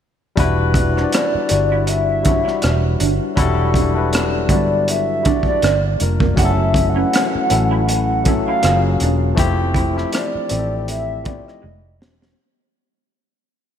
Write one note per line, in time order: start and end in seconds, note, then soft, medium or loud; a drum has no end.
0.36 1.03 E1 loud
0.36 0.91 G3 loud
0.36 0.91 D4 medium
0.36 0.92 E4 medium
0.36 0.92 F#4 loud
0.36 kick medium
0.36 closed hi-hat medium
0.40 0.52 E4 medium
0.40 0.93 B4 loud
0.74 muted clean electric guitar stroke soft
0.74 kick medium
0.74 closed hi-hat medium
0.93 1.46 G3 medium
0.93 1.46 D4 medium
0.93 1.47 E4 medium
0.93 1.47 F#4 medium
0.97 1.08 D4 medium
0.97 1.02 C5 medium
0.97 cross-stick soft
1.04 1.51 D5 medium
1.12 1.27 E4 medium
1.12 1.85 D5 loud
1.12 cross-stick loud
1.12 closed hi-hat medium
1.35 muted fingered electric bass stroke soft
1.49 2.42 G1 medium
1.49 2.20 G3 medium
1.49 2.21 D4 medium
1.49 2.22 E4 medium
1.49 2.22 F#4 medium
1.49 muted clean electric guitar stroke soft
1.49 closed hi-hat medium
1.53 2.23 B4 medium
1.72 1.82 E4 medium
1.87 2.97 E5 loud
1.87 muted clean electric guitar stroke soft
1.87 closed hi-hat medium
2.23 3.30 G3 medium
2.23 3.31 D4 medium
2.23 2.39 D4 medium
2.23 3.32 E4 medium
2.23 3.32 F#4 medium
2.23 kick medium
2.23 closed hi-hat medium
2.27 3.33 C#5 medium
2.45 2.56 E4 medium
2.45 cross-stick soft
2.62 2.96 E1 medium
2.62 cross-stick medium
2.62 closed hi-hat medium
3.00 3.18 G1 medium
3.00 3.13 D4 medium
3.00 closed hi-hat medium
3.35 4.50 E1 medium
3.35 3.43 F#3 medium
3.35 3.91 D4 medium
3.35 3.50 E4 medium
3.35 3.92 E4 medium
3.35 3.92 F#4 medium
3.35 kick medium
3.35 closed hi-hat medium
3.39 3.93 G3 loud
3.39 3.93 A4 loud
3.74 3.88 D4 medium
3.74 kick medium
3.74 closed hi-hat medium
3.94 4.46 G3 medium
3.94 4.47 D4 medium
3.94 4.47 E4 medium
3.94 4.48 F#4 medium
3.98 4.48 B4 medium
4.13 cross-stick loud
4.13 closed hi-hat medium
4.49 5.41 G1 medium
4.49 4.56 F#3 medium
4.49 4.63 B3 medium
4.49 5.21 D4 medium
4.49 5.21 E4 medium
4.49 5.22 F#4 medium
4.49 kick medium
4.49 closed hi-hat medium
4.53 5.22 G3 medium
4.53 5.23 D5 medium
4.53 4.87 D5 medium
4.88 5.43 E5 loud
4.88 closed hi-hat medium
5.23 5.61 G3 medium
5.23 5.62 D4 medium
5.23 5.39 D4 medium
5.23 5.63 E4 medium
5.23 5.63 F#4 medium
5.23 kick medium
5.23 closed hi-hat medium
5.27 5.64 D5 medium
5.43 kick medium
5.48 5.97 D5 medium
5.62 5.96 G1 medium
5.62 5.76 A#3 medium
5.62 cross-stick medium
5.62 closed hi-hat medium
5.98 6.33 F1 medium
5.98 6.34 G3 medium
5.98 6.35 A#3 soft
5.98 6.36 D4 soft
5.98 6.36 F4 soft
5.98 muted clean electric guitar stroke soft
5.98 closed hi-hat medium
6.02 6.37 A#4 medium
6.20 6.31 A#3 medium
6.20 kick medium
6.34 7.03 F#1 medium
6.34 6.90 F#3 medium
6.34 6.91 A3 medium
6.34 6.91 C#4 medium
6.34 6.92 E4 medium
6.34 kick medium
6.34 closed hi-hat medium
6.38 6.51 F#4 medium
6.38 6.45 G4 medium
6.38 6.91 E5 loud
6.45 6.96 A4 loud
6.74 muted clean electric guitar stroke soft
6.74 kick medium
6.74 closed hi-hat medium
6.89 7.88 F#5 loud
6.94 7.46 F#3 medium
6.94 7.47 A3 medium
6.94 7.07 C#4 medium
6.94 7.47 C#4 medium
6.94 7.48 E4 medium
6.98 7.48 B4 medium
7.13 7.27 E4 medium
7.13 cross-stick loud
7.13 closed hi-hat medium
7.35 muted fingered electric bass stroke soft
7.48 8.42 A1 medium
7.48 8.20 F#3 medium
7.48 8.20 A3 medium
7.48 8.21 C#4 medium
7.48 8.21 E4 medium
7.48 muted clean electric guitar stroke soft
7.48 closed hi-hat medium
7.52 8.22 A4 medium
7.71 7.82 E4 medium
7.88 8.35 F#5 medium
7.88 muted clean electric guitar stroke soft
7.88 closed hi-hat medium
8.24 8.59 F#3 medium
8.24 8.62 A3 medium
8.24 8.61 C#4 medium
8.24 8.40 C#4 medium
8.24 8.64 E4 medium
8.24 kick medium
8.24 closed hi-hat medium
8.28 8.64 A4 medium
8.46 8.58 E4 medium
8.46 8.96 F5 medium
8.60 8.96 F#1 medium
8.60 9.32 F#3 medium
8.60 9.33 A#3 medium
8.60 9.33 C#4 medium
8.60 9.34 F4 medium
8.60 closed hi-hat medium
8.65 9.34 G#4 medium
8.65 cross-stick medium
9.00 9.33 E1 medium
9.00 9.15 D4 medium
9.00 closed hi-hat medium
9.35 10.03 F1 medium
9.35 9.90 F3 medium
9.35 9.91 A3 loud
9.35 9.91 C4 loud
9.35 9.92 E4 loud
9.35 kick loud
9.35 closed hi-hat medium
9.39 9.52 C4 medium
9.39 9.93 G4 loud
9.74 9.88 E4 medium
9.74 kick medium
9.74 closed hi-hat medium
9.93 10.46 F3 medium
9.93 10.47 A3 medium
9.93 10.47 C4 medium
9.93 10.47 E4 medium
9.97 10.48 G4 medium
9.97 cross-stick soft
10.13 cross-stick loud
10.13 closed hi-hat medium
10.17 10.86 D5 loud
10.35 muted fingered electric bass stroke soft
10.48 11.42 A1 medium
10.48 11.20 F3 medium
10.48 11.21 A3 medium
10.48 10.63 C4 medium
10.48 11.21 C4 medium
10.48 11.22 E4 medium
10.48 closed hi-hat medium
10.52 10.58 G4 medium
10.59 11.25 A4 medium
10.88 11.28 E5 loud
10.88 closed hi-hat medium
11.23 11.62 F3 medium
11.23 11.62 A3 medium
11.23 11.38 B3 medium
11.23 11.63 C4 medium
11.23 11.63 E4 medium
11.23 11.46 D5 medium
11.23 kick loud
11.23 closed hi-hat medium
11.28 11.64 G4 medium
11.46 11.97 D#5 medium
11.46 cross-stick soft
11.62 12.01 F1 medium
11.62 11.75 G#3 medium
11.99 12.34 E1 medium
11.99 12.35 F3 medium
11.99 12.35 G#3 soft
11.99 12.36 C4 soft
11.99 12.37 D#4 soft
11.99 12.37 G4 medium
11.99 muted clean electric guitar stroke soft
11.99 snare medium
12.21 12.32 G#3 medium
12.21 snare medium